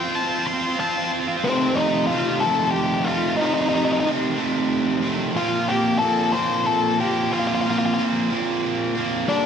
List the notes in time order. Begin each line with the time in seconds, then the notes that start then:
Already playing: G5
0.01 C4 F4
0.08 C4 F4
0.15 C4 F4 A5
0.22 C4 F4
0.29 C4
0.35 C4 F4
0.42 C4 F4
0.47 F4 C6
0.53 C4
0.58 C4 F4
0.66 C4 F4
0.73 C4 F4
0.80 C4 F4 A5
0.90 C4 F4
0.97 C4 F4
1.05 C4 F4
1.12 C4 F4
1.20 C4 F4
1.28 C4 F4
1.36 C4 F4
1.44 F2 C3 D#3 A3 C4
1.75 A3 C4 D#4
1.81 D#3
2.07 C3 D#3 A3 F4
2.12 C4
2.40 C3 D#3 A3 C4 A4
2.45 F2
2.71 G4
3.04 C4 F4
3.09 D#3 A3
3.37 F2 C3 D#3 D#4
3.41 A3 C4
3.45 D#4
3.54 D#4
3.61 D#4
3.69 C4 D#4
3.74 D#3 A3 D#4
3.85 D#4
3.93 D#4
4.00 D#4
4.05 C3 D#3 A3 C4
4.37 F2 C3 D#3 A3 C4
5.02 D#3 A3 C4
5.35 A#2 F3 A#3 C4 F4
5.67 F3 A#3 C4 G4
5.99 A#2 F3 A#3 A4
6.03 C4
6.32 A#2 F3 A#3 C4 C5
6.66 A4
6.98 F3 A#3 C4 G4
7.31 A#2 F3 A#3 C4 F4
7.39 F4
7.47 F4
7.55 F4
7.61 C4 F4
7.66 F3 A#3
7.70 F4
7.79 F4
7.86 F4
7.94 A#2 F4
7.99 F3 A#3 C4
8.30 A#2 F3 A#3 C4
8.95 F3 A#3 C4
9.27 G2 D3 G3 A#3 D4